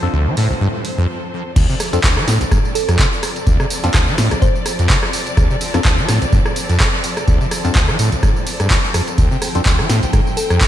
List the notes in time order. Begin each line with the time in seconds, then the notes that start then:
Already playing: F3 C4 A4 C5
0.03 F2 C4 D4 F4 A4
0.13 D2
0.27 F3
0.37 A2, open hi-hat
0.50 C2
0.61 G2
0.85 open hi-hat
0.98 F2
1.56 D2 F3 C4 A4 D5, kick, closed hi-hat, crash, tambourine
1.69 C3, tambourine
1.80 cross-stick, open hi-hat, tambourine
1.93 F2 C4 D4 F4 A4, closed hi-hat, tambourine
2.04 D2, kick, clap, closed hi-hat, tambourine
2.17 F3, cross-stick, tambourine
2.27 A2, snare, open hi-hat, tambourine
2.41 C2, closed hi-hat, tambourine
2.51 G2, kick, cross-stick, closed hi-hat, tambourine
2.65 tambourine
2.75 A4, open hi-hat, tambourine
2.88 F2, cross-stick, closed hi-hat, tambourine
2.99 C3, kick, clap, closed hi-hat, tambourine
3.13 tambourine
3.23 cross-stick, open hi-hat, tambourine
3.36 closed hi-hat, tambourine
3.47 D2, kick, closed hi-hat, tambourine
3.60 C3, cross-stick, tambourine
3.70 open hi-hat, tambourine
3.84 F2 C4 D4 F4 A4, snare, closed hi-hat, tambourine
3.94 D2, kick, cross-stick, clap, closed hi-hat, tambourine
4.07 F3, tambourine
4.18 A2, snare, open hi-hat, tambourine
4.31 C2, cross-stick, closed hi-hat, tambourine
4.42 G2 C5, kick, closed hi-hat, tambourine
4.55 tambourine
4.66 cross-stick, open hi-hat, tambourine
4.79 F2, closed hi-hat, tambourine
4.90 C3, kick, clap, open hi-hat, tambourine
5.03 cross-stick, tambourine
5.13 open hi-hat, tambourine
5.27 closed hi-hat, tambourine
5.37 D2, kick, cross-stick, closed hi-hat, tambourine
5.50 C3, tambourine
5.61 open hi-hat, tambourine
5.74 F2 C4 D4 F4 A4, cross-stick, snare, closed hi-hat, tambourine
5.85 D2, kick, clap, closed hi-hat, tambourine
5.98 F3, tambourine
6.09 A2, cross-stick, snare, open hi-hat, tambourine
6.22 C2, closed hi-hat, tambourine
6.32 G2, kick, closed hi-hat, tambourine
6.46 cross-stick, tambourine
6.56 open hi-hat, tambourine
6.69 F2, closed hi-hat, tambourine
6.80 C3, kick, cross-stick, clap, closed hi-hat, tambourine
6.94 tambourine
7.04 open hi-hat, tambourine
7.17 cross-stick, closed hi-hat, tambourine
7.28 D2, kick, closed hi-hat, tambourine
7.41 C3, tambourine
7.51 cross-stick, open hi-hat, tambourine
7.65 F2 C4 D4 F4 A4, closed hi-hat, tambourine
7.75 D2, kick, clap, closed hi-hat, tambourine
7.88 F3, cross-stick, tambourine
7.99 A2, open hi-hat, tambourine
8.12 C2, closed hi-hat, tambourine
8.23 G2, kick, cross-stick, closed hi-hat, tambourine
8.36 tambourine
8.47 open hi-hat, tambourine
8.60 G2, cross-stick, closed hi-hat, tambourine
8.70 D2, kick, clap, open hi-hat, tambourine
8.84 tambourine
8.94 F2, cross-stick, open hi-hat, tambourine
9.08 closed hi-hat, tambourine
9.18 D2 G5, kick, closed hi-hat, ride, tambourine
9.31 C3, tambourine
9.42 cross-stick, open hi-hat, tambourine
9.55 F2 C4 D4 F4 A4, closed hi-hat, tambourine
9.66 D2, kick, clap, closed hi-hat, ride, tambourine
9.79 F3, cross-stick, tambourine
9.89 A2, snare, open hi-hat, tambourine
10.03 C2, closed hi-hat, tambourine
10.13 G2, kick, cross-stick, closed hi-hat, ride, tambourine
10.27 tambourine
10.37 A4, open hi-hat, tambourine
10.50 F2, cross-stick, closed hi-hat, tambourine
10.61 C3, kick, clap, closed hi-hat, ride, tambourine